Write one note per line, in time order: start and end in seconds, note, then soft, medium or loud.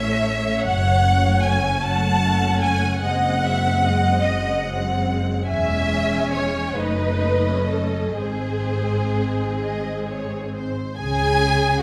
0.00 0.50 A1 medium
0.00 0.50 A2 medium
0.00 0.63 A3 medium
0.00 0.62 C#4 soft
0.00 1.78 C#5 medium
0.00 0.62 E5 medium
0.64 1.68 F#1 medium
0.64 1.68 F#2 medium
0.64 1.44 F#5 medium
1.04 2.20 A3 soft
1.04 2.20 C#4 soft
1.44 1.83 G#5 medium
1.82 2.89 F#1 medium
1.82 2.89 F#2 medium
1.82 3.01 F#5 medium
1.82 2.63 A5 medium
2.23 3.02 A3 medium
2.23 3.02 C#4 soft
2.62 3.02 G#5 medium
3.03 4.10 F#1 medium
3.03 4.10 F#2 medium
3.03 3.42 G#3 soft
3.03 3.43 C4 soft
3.03 3.43 D#5 medium
3.03 4.22 F#5 medium
3.43 4.62 G#3 soft
3.43 4.62 C4 soft
3.43 3.85 E5 medium
3.85 4.25 D#5 medium
4.24 5.33 F#1 medium
4.24 5.33 F#2 medium
4.24 4.65 D#5 medium
4.24 5.48 F#5 medium
4.65 5.46 G#3 soft
4.65 5.46 C4 soft
5.48 6.74 E1 soft
5.48 6.74 E2 soft
5.48 6.75 G#3 soft
5.48 6.75 C#4 medium
5.48 6.30 E5 medium
5.48 6.76 G#5 medium
6.34 6.78 C#5 medium
6.78 8.16 F#1 soft
6.78 8.16 F#2 soft
6.78 8.19 A3 medium
6.78 7.47 D#4 soft
6.78 7.72 B4 medium
6.78 8.19 D#5 medium
7.48 8.19 C#4 soft
7.72 8.19 A4 medium
8.18 10.75 G#1 soft
8.18 10.75 G#2 soft
8.18 10.79 G#3 soft
8.18 10.74 C4 soft
8.18 10.51 G#4 medium
8.18 9.53 C5 soft
9.61 10.04 D#5 soft
10.08 10.54 C#5 soft
10.55 10.98 C5 medium
10.97 11.83 C#2 medium
10.97 11.83 C#3 medium
10.97 11.79 G#4 medium
10.97 11.78 G#5 medium